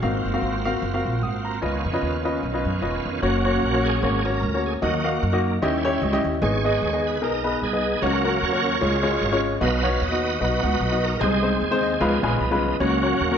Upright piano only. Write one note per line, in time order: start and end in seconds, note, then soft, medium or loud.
0.02 0.61 G#2 medium
0.02 0.25 C4 medium
0.02 0.25 F#4 medium
0.02 0.25 A#4 medium
0.02 0.25 F5 medium
0.34 0.54 C4 medium
0.34 0.54 F#4 medium
0.34 0.54 A#4 medium
0.34 0.54 F5 medium
0.65 0.83 C4 medium
0.65 0.83 F#4 medium
0.65 0.83 A#4 medium
0.65 0.83 F5 medium
0.94 1.14 C4 medium
0.94 1.14 F#4 medium
0.94 1.14 A#4 medium
0.94 1.14 F5 medium
1.23 1.44 F#5 medium
1.23 1.44 D#6 medium
1.45 1.83 A#5 medium
1.62 2.21 C#3 medium
1.62 1.85 C#4 medium
1.62 1.85 F4 medium
1.62 1.85 B4 medium
1.62 1.85 D#5 medium
1.93 2.14 C#4 medium
1.93 2.14 F4 medium
1.93 2.14 B4 medium
1.93 2.14 D#5 medium
2.25 2.43 C#4 medium
2.25 2.43 F4 medium
2.25 2.43 B4 medium
2.25 2.43 D#5 medium
2.53 2.74 C#4 medium
2.53 2.74 F4 medium
2.53 2.74 B4 medium
2.53 2.74 D#5 medium
2.82 3.11 C#4 medium
2.82 3.11 F4 medium
2.82 3.11 B4 medium
2.82 3.11 D#5 medium
3.22 3.38 A#3 medium
3.22 3.38 C#4 medium
3.22 3.38 F#4 medium
3.22 3.38 C#5 medium
3.45 3.63 A#3 medium
3.45 3.63 C#4 medium
3.45 3.63 F#4 medium
3.45 3.63 C#5 medium
3.73 3.94 A#3 medium
3.73 3.94 C#4 medium
3.73 3.94 F#4 medium
3.73 3.94 C#5 medium
4.02 4.18 A#3 medium
4.02 4.18 C#4 medium
4.02 4.18 F#4 medium
4.02 4.18 C#5 medium
4.25 4.43 A#3 medium
4.25 4.43 C#4 medium
4.25 4.43 F#4 medium
4.25 4.43 C#5 medium
4.54 4.74 A#3 medium
4.54 4.74 C#4 medium
4.54 4.74 F#4 medium
4.54 4.74 C#5 medium
4.82 5.41 D#3 medium
4.82 4.97 A#3 medium
4.82 4.97 D#4 medium
4.82 4.97 F#4 medium
4.82 4.98 D#5 medium
5.04 5.22 A#3 medium
5.04 5.22 D#4 medium
5.04 5.22 F#4 medium
5.04 5.22 F5 medium
5.33 5.53 A#3 medium
5.33 5.53 D#4 medium
5.33 5.53 F#4 medium
5.33 5.53 D#5 medium
5.62 6.21 D#3 medium
5.62 5.77 C#4 medium
5.62 5.77 E4 medium
5.62 5.78 G4 medium
5.62 5.78 D#5 loud
5.84 6.02 C#4 medium
5.84 6.02 E4 medium
5.84 6.02 G4 medium
5.84 6.02 C#5 loud
6.01 6.12 D#5 medium
6.13 6.33 C#4 medium
6.13 6.33 E4 medium
6.13 6.33 G4 medium
6.13 6.33 D#5 loud
6.42 7.00 G#2 medium
6.42 6.57 B3 medium
6.42 6.57 D#4 medium
6.42 6.57 G#4 medium
6.42 6.57 D#5 medium
6.64 6.82 B3 medium
6.64 6.82 D#4 medium
6.64 6.82 G#4 medium
6.64 6.82 D#5 medium
6.93 7.13 B3 medium
6.93 7.13 D#4 medium
6.93 7.13 G#4 medium
6.93 7.13 D#5 medium
7.21 7.37 B3 medium
7.21 7.37 D#4 medium
7.21 7.37 G#4 medium
7.21 7.37 A#4 medium
7.44 7.62 B3 medium
7.44 7.62 D#4 medium
7.44 7.62 G#4 medium
7.44 7.62 B4 medium
7.73 7.93 B3 medium
7.73 7.93 D#4 medium
7.73 7.93 G#4 medium
7.73 7.93 D#5 medium
8.02 8.60 C#3 medium
8.02 8.17 A#3 medium
8.02 8.17 C#4 medium
8.02 8.17 F#4 medium
8.02 8.17 C#5 medium
8.24 8.42 A#3 medium
8.24 8.42 C#4 medium
8.24 8.42 F#4 medium
8.24 8.42 A#4 medium
8.52 8.73 A#3 medium
8.52 8.73 C#4 medium
8.52 8.73 F#4 medium
8.52 8.73 C#5 medium
8.81 9.40 C#3 medium
8.81 8.97 G#3 medium
8.81 8.97 C#4 medium
8.81 8.97 F4 medium
8.81 8.97 C#5 medium
9.03 9.21 G#3 medium
9.03 9.21 C#4 medium
9.03 9.21 F4 medium
9.03 9.21 C#5 medium
9.32 9.53 G#3 medium
9.32 9.53 C#4 medium
9.32 9.53 F4 medium
9.32 9.53 C#5 medium
9.60 10.19 B2 medium
9.60 9.76 B3 medium
9.60 9.76 D#4 medium
9.60 9.76 F#4 medium
9.60 9.76 D#5 medium
9.83 10.01 B3 medium
9.83 10.01 D#4 medium
9.83 10.01 F#4 medium
9.83 10.01 C#5 medium
10.11 10.32 B3 medium
10.11 10.32 D#4 medium
10.11 10.33 F#4 medium
10.11 10.32 D#5 medium
10.40 10.56 B3 medium
10.40 10.56 D#4 medium
10.40 10.56 F#4 medium
10.40 10.56 D#5 medium
10.62 10.81 B3 medium
10.62 10.80 D#4 medium
10.62 10.81 F#4 medium
10.62 10.81 F#5 medium
10.92 11.12 B3 medium
10.92 11.12 D#4 medium
10.92 11.12 F#4 medium
10.92 11.12 D#5 medium
11.20 11.79 C3 medium
11.20 11.36 G#3 medium
11.20 11.36 C4 medium
11.20 11.36 D#4 medium
11.20 11.36 C5 medium
11.42 11.60 G#3 medium
11.42 11.61 C4 medium
11.42 11.61 D#4 medium
11.42 11.61 C5 medium
11.71 11.92 G#3 medium
11.71 11.92 C4 medium
11.71 11.92 D#4 medium
11.71 11.92 C5 loud
11.83 11.99 D#5 medium
12.00 12.59 C#3 medium
12.00 12.16 G#3 medium
12.00 12.16 C#4 medium
12.00 12.16 F4 medium
12.00 12.16 B4 medium
12.00 12.22 F5 medium
12.23 12.41 G#3 medium
12.23 12.41 C#4 medium
12.23 12.41 F4 medium
12.23 12.41 B4 loud
12.23 12.39 G#5 medium
12.41 12.78 B5 medium
12.51 12.72 G#3 medium
12.51 12.72 C#4 medium
12.51 12.72 F4 medium
12.51 12.72 B4 medium
12.80 13.38 C#3 medium
12.80 12.96 A#3 medium
12.80 12.96 C#4 medium
12.80 12.96 F#4 medium
12.80 12.96 C#5 medium
13.02 13.20 A#3 medium
13.02 13.20 C#4 medium
13.02 13.21 F#4 medium
13.02 13.21 C#5 medium
13.31 13.38 A#3 medium
13.31 13.38 C#4 medium
13.31 13.38 F#4 medium
13.31 13.38 A#4 medium